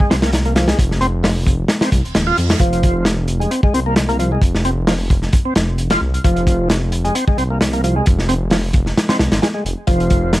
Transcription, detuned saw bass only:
0.10 0.74 C2 loud
0.79 1.65 F1 loud
1.92 2.01 C2 medium
2.04 2.13 D#1 soft
2.15 2.32 D#1 medium
2.38 2.55 F2 medium
2.60 3.46 F1 loud
3.74 4.37 C2 loud
4.42 5.28 F1 loud
5.56 5.97 F1 medium
6.01 6.18 C2 medium
6.24 7.10 F1 loud
7.37 8.01 C2 medium
8.07 8.93 F1 loud
9.19 9.28 C2 medium
9.32 9.39 G#1 medium
9.65 9.74 F1 medium
9.88 10.40 F1 loud

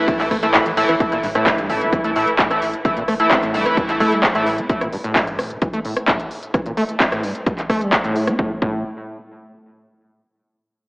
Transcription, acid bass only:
0.08 0.14 G2 medium
0.31 0.37 A3 medium
0.43 0.46 A3 medium
0.54 0.58 A2 medium
0.66 0.72 E3 medium
0.77 0.84 A2 medium
0.89 0.95 E3 medium
1.00 1.04 A2 medium
1.12 1.18 A#2 medium
1.23 1.27 G2 medium
1.35 1.60 A2 loud
1.58 1.71 G2 loud
1.70 1.83 A1 medium
1.81 1.88 C3 medium
1.93 1.99 E3 medium
2.04 2.11 A3 loud
2.16 2.25 A2 medium
2.39 2.48 A2 loud
2.85 2.91 E3 medium
2.97 3.03 A#2 medium
3.08 3.15 A3 loud
3.31 3.38 C4 loud
3.43 3.56 A2 loud
3.54 3.64 G2 loud
3.77 3.84 G2 medium
4.00 4.14 A3 loud
4.12 4.21 G3 medium
4.23 4.27 A3 medium
4.35 4.60 A2 loud
4.58 4.68 C4 loud
4.69 4.73 A2 medium
4.81 4.88 A#2 medium
4.93 4.96 G2 medium
5.04 5.29 A2 loud
5.27 5.40 G2 loud
5.39 5.52 A1 medium
5.50 5.57 C3 medium
5.62 5.68 E3 medium
5.73 5.80 A3 loud
5.85 5.95 A2 medium
6.08 6.18 A2 loud
6.54 6.61 E3 medium
6.66 6.72 A#2 medium
6.77 6.84 A3 loud
7.00 7.07 C4 loud
7.12 7.25 A2 loud
7.23 7.33 G2 loud
7.47 7.53 G2 medium
7.70 7.83 A3 loud
7.81 7.91 G3 medium
7.93 7.96 A3 medium
8.04 8.29 A2 loud
8.28 8.37 C4 loud
8.39 8.52 A2 medium
8.62 8.83 A2 medium

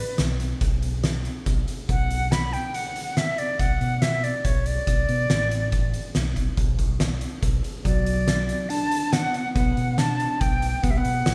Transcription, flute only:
0.00 0.19 B4 medium
1.89 2.33 F#5 medium
2.32 2.55 B5 medium
2.53 2.76 G5 medium
2.75 3.19 F#5 medium
3.17 3.40 E5 medium
3.39 3.61 D5 medium
3.60 4.03 F#5 medium
4.02 4.25 E5 medium
4.24 4.47 D5 medium
4.45 4.68 C#5 medium
4.67 6.15 D5 medium
7.85 8.71 D5 medium
8.69 9.14 A5 medium
9.13 9.54 F#5 medium
9.55 10.00 F#5 medium
9.98 10.42 A5 medium
10.40 10.85 G5 medium
10.83 10.92 F#5 medium
10.91 10.99 E5 medium
10.97 11.35 F#5 medium

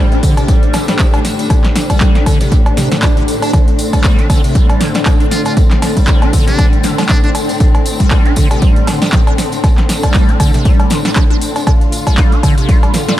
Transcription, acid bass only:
0.00 0.13 G3 medium
0.12 0.21 D4 loud
0.23 0.35 D3 loud
0.37 0.50 C3 medium
0.48 0.75 G3 medium
0.74 0.86 D3 medium
0.88 0.94 G3 medium
0.99 1.07 F3 medium
1.14 1.20 D4 medium
1.50 1.55 D3 medium
1.90 2.17 G3 medium
2.15 2.24 D4 loud
2.26 2.38 D3 loud
2.41 2.53 C3 medium
2.52 2.57 G3 medium
2.77 2.89 C3 medium
2.92 2.98 D3 medium
3.03 3.07 D3 loud
3.17 3.23 D3 medium
3.42 3.52 D4 medium
3.54 3.58 D3 medium
3.93 4.20 G3 medium
4.19 4.28 D4 loud
4.30 4.42 D3 loud
4.44 4.57 C3 medium
4.55 4.82 G3 medium
4.81 4.92 D3 medium
4.95 5.01 G3 medium
5.06 5.14 F3 medium
5.20 5.27 D4 medium
5.57 5.62 D3 medium
5.97 6.24 G3 medium
6.22 6.31 D4 loud
6.33 6.45 D3 loud
6.48 6.60 C3 medium
6.59 6.85 G3 medium
6.84 6.96 D3 medium
6.98 7.04 G3 medium
7.09 7.17 F3 medium
7.24 7.30 D4 medium
7.60 7.65 D3 medium
8.00 8.27 G3 medium
8.26 8.35 D4 loud
8.37 8.48 D3 loud
8.51 8.63 C3 medium
8.62 8.89 G3 medium
8.87 8.99 D3 medium
9.02 9.08 G3 medium
9.13 9.21 F3 medium
9.27 9.33 D4 medium
9.64 9.68 D3 medium
10.03 10.30 G3 medium
10.29 10.38 D4 loud
10.40 10.52 D3 loud
10.54 10.67 C3 medium
10.65 10.92 G3 medium
10.91 11.03 D3 medium
11.05 11.11 G3 medium
11.16 11.24 F3 medium
11.30 11.37 D4 medium
11.67 11.72 D3 medium
12.07 12.34 G3 medium
12.32 12.41 D4 loud
12.43 12.55 D3 loud
12.58 12.70 C3 medium
12.69 12.96 G3 medium
12.94 13.06 D3 medium
13.08 13.15 G3 medium

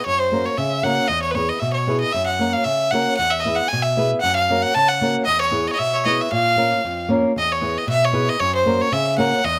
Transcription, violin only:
0.06 0.21 C#5 loud
0.20 0.47 C5 medium
0.45 0.59 C#5 medium
0.58 0.85 E5 medium
0.83 1.09 F#5 medium
1.08 1.22 D#5 medium
1.22 1.33 C#5 medium
1.31 1.36 B4 medium
1.31 1.51 C#5 medium
1.49 1.61 D#5 medium
1.59 1.73 E5 medium
1.73 2.00 C#5 medium
2.01 2.14 D#5 medium
2.12 2.26 E5 medium
2.27 2.54 F#5 medium
2.53 2.66 F5 medium
2.65 2.92 E5 medium
2.91 3.16 F#5 medium
3.17 3.32 F#5 loud
3.31 3.41 E5 medium
3.39 3.43 D#5 medium
3.39 3.57 E5 medium
3.56 3.70 F#5 medium
3.68 3.84 G#5 medium
3.82 4.10 E5 medium
4.21 4.35 F#5 loud
4.36 4.64 F5 medium
4.62 4.76 F#5 medium
4.74 4.89 A5 loud
4.88 5.15 F#5 medium
5.26 5.40 D#5 loud
5.41 5.69 C#5 medium
5.67 5.75 C#5 medium
5.67 5.73 D#5 medium
5.74 5.80 D#5 medium
5.78 5.96 E5 medium
5.94 6.07 C#5 medium
6.06 6.23 D#5 medium
6.21 6.32 E5 medium
6.33 7.07 F5 loud
7.38 7.53 D#5 medium
7.52 7.79 C#5 medium
7.78 7.89 D#5 medium
7.90 8.06 E5 medium
8.04 8.30 C#5 medium
8.29 8.41 D#5 medium
8.40 8.54 C#5 loud
8.55 8.83 C5 medium
8.81 8.94 C#5 medium
8.93 9.18 E5 medium
9.18 9.46 F#5 medium
9.44 9.59 D#5 loud

